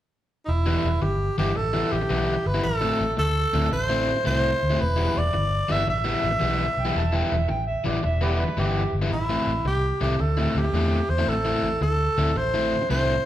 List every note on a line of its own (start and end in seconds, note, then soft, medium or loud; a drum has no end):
0.45 0.74 E1 medium
0.45 0.50 D#4 medium
0.45 1.03 E4 medium
0.66 0.87 E3 medium
0.66 0.87 G3 medium
0.66 0.87 B3 medium
0.66 0.87 E4 medium
0.84 0.97 E1 medium
1.02 1.28 G1 medium
1.02 1.38 G4 medium
1.02 muted overdriven electric guitar stroke soft
1.38 1.51 G1 medium
1.38 1.50 E3 medium
1.38 1.50 G3 medium
1.38 1.50 B3 medium
1.38 1.50 E4 medium
1.38 1.58 G4 medium
1.55 1.82 A1 medium
1.55 1.94 A4 medium
1.55 muted overdriven electric guitar stroke soft
1.73 1.95 E3 medium
1.73 1.95 G3 medium
1.73 1.95 B3 medium
1.73 1.94 E4 medium
1.92 2.05 A1 medium
1.92 2.48 G4 medium
2.01 muted overdriven electric guitar stroke soft
2.09 2.36 B1 medium
2.09 2.33 E3 medium
2.09 2.33 G3 medium
2.09 2.33 B3 medium
2.09 2.34 E4 medium
2.46 2.59 G1 medium
2.46 2.63 B4 medium
2.54 2.64 E3 medium
2.54 2.64 G3 medium
2.54 2.64 B3 medium
2.54 2.64 E4 medium
2.64 2.91 A1 medium
2.64 3.14 A4 medium
2.81 3.03 A2 medium
2.81 3.03 A3 medium
2.81 3.03 C4 medium
2.81 3.02 E4 medium
3.00 3.13 A1 medium
3.17 3.44 D2 medium
3.17 3.68 A4 medium
3.17 muted overdriven electric guitar stroke soft
3.53 3.67 D2 medium
3.53 3.65 A2 medium
3.53 3.65 A3 medium
3.53 3.66 C4 medium
3.53 3.66 E4 loud
3.71 4.11 A1 medium
3.71 4.22 C5 medium
3.71 muted overdriven electric guitar stroke soft
3.89 4.11 A2 medium
3.89 4.11 A3 medium
3.89 4.11 C4 medium
3.89 4.10 E4 medium
4.17 muted overdriven electric guitar stroke soft
4.24 4.52 C2 medium
4.24 4.48 A2 medium
4.24 4.49 A3 medium
4.24 4.49 C4 medium
4.24 4.49 E4 medium
4.24 4.82 C5 medium
4.63 4.75 D2 medium
4.70 4.80 A2 medium
4.70 4.80 A3 medium
4.70 4.80 C4 medium
4.70 4.79 E4 medium
4.81 5.07 E1 medium
4.81 5.19 B4 medium
4.96 5.18 E3 medium
4.96 5.18 G3 medium
4.96 5.18 B3 medium
4.96 5.18 E4 medium
5.17 5.29 E1 medium
5.17 5.74 D5 medium
5.33 5.61 G1 medium
5.33 muted overdriven electric guitar stroke soft
5.69 5.83 G1 medium
5.69 5.81 E3 medium
5.69 5.81 G3 medium
5.69 5.81 B3 medium
5.69 5.81 E4 loud
5.69 5.89 E5 loud
5.87 6.14 A1 medium
5.87 7.47 E5 medium
5.87 muted overdriven electric guitar stroke soft
6.04 6.26 E3 medium
6.04 6.26 G3 medium
6.04 6.26 B3 medium
6.04 6.26 E4 medium
6.23 6.37 A1 medium
6.31 muted overdriven electric guitar stroke soft
6.40 6.68 B1 medium
6.40 6.64 E3 medium
6.40 6.64 G3 medium
6.40 6.64 B3 medium
6.40 6.65 E4 medium
6.77 6.90 B1 medium
6.77 6.96 G5 medium
6.85 7.01 E3 medium
6.85 7.01 G3 medium
6.85 7.00 B3 medium
6.85 7.00 E4 medium
6.95 7.22 E1 medium
6.95 7.06 E5 medium
6.95 7.18 A5 medium
7.13 7.35 E3 medium
7.13 7.34 G3 medium
7.13 7.34 B3 medium
7.13 7.34 E4 medium
7.13 7.33 G5 medium
7.32 7.45 E1 medium
7.32 7.49 E5 medium
7.49 7.76 A1 medium
7.49 7.66 G5 medium
7.49 muted overdriven electric guitar stroke soft
7.67 7.89 E5 medium
7.84 7.99 A1 medium
7.84 7.97 E3 medium
7.84 7.97 G3 medium
7.84 7.97 B3 medium
7.84 7.97 E4 medium
7.84 8.04 D5 medium
8.03 8.43 E1 medium
8.03 8.22 E5 medium
8.03 muted overdriven electric guitar stroke soft
8.21 8.43 E3 medium
8.21 8.42 G3 medium
8.21 8.42 B3 medium
8.21 8.42 E4 medium
8.21 8.30 G4 medium
8.21 8.29 B4 medium
8.21 8.41 D5 medium
8.40 8.57 B4 medium
8.48 muted overdriven electric guitar stroke soft
8.57 8.83 G1 medium
8.57 8.81 E3 medium
8.57 8.81 G3 medium
8.57 8.81 B3 medium
8.57 8.81 E4 medium
8.57 8.93 G4 medium
8.93 9.06 G1 medium
9.02 9.12 E3 medium
9.02 9.11 G3 medium
9.02 9.11 B3 medium
9.02 9.11 E4 medium
9.11 9.37 A1 medium
9.11 9.62 E4 medium
9.29 9.51 A2 medium
9.29 9.50 A3 medium
9.29 9.50 C4 medium
9.29 9.50 E4 medium
9.47 9.60 A1 medium
9.65 9.91 C2 medium
9.65 10.00 G4 medium
9.65 muted overdriven electric guitar stroke soft
10.01 10.14 C2 medium
10.01 10.13 A2 medium
10.01 10.13 A3 medium
10.01 10.13 C4 medium
10.01 10.13 E4 medium
10.01 10.22 G4 medium
10.19 10.46 D2 medium
10.19 10.59 A4 medium
10.19 muted overdriven electric guitar stroke soft
10.37 10.59 A2 medium
10.37 10.59 A3 medium
10.37 10.58 C4 medium
10.37 10.58 E4 medium
10.55 10.68 D2 medium
10.55 11.11 G4 medium
10.64 muted overdriven electric guitar stroke soft
10.73 10.99 E2 medium
10.73 10.97 A2 medium
10.73 10.97 A3 medium
10.73 10.98 C4 medium
10.73 10.98 E4 medium
11.09 11.22 E2 medium
11.09 11.31 C5 medium
11.18 11.33 A2 medium
11.18 11.33 A3 medium
11.18 11.33 C4 medium
11.18 11.33 E4 medium
11.27 11.54 A1 medium
11.27 11.82 A4 medium
11.45 11.67 A2 medium
11.45 11.66 A3 medium
11.45 11.66 C4 medium
11.45 11.66 E4 medium
11.62 11.76 A1 medium
11.81 12.07 D2 medium
11.81 12.39 A4 medium
11.81 muted overdriven electric guitar stroke soft
12.17 12.31 D2 medium
12.17 12.29 A2 medium
12.17 12.29 A3 medium
12.17 12.30 C4 medium
12.17 12.30 E4 medium
12.35 12.75 A1 medium
12.35 12.90 C5 medium
12.35 muted overdriven electric guitar stroke soft
12.54 12.75 A2 medium
12.54 12.75 A3 medium
12.54 12.75 C4 medium
12.54 12.75 E4 medium
12.81 muted overdriven electric guitar stroke soft
12.89 13.16 C2 medium
12.89 13.13 A2 medium
12.89 13.13 A3 medium
12.89 13.13 C4 medium
12.89 13.14 E4 medium
12.89 13.25 C5 medium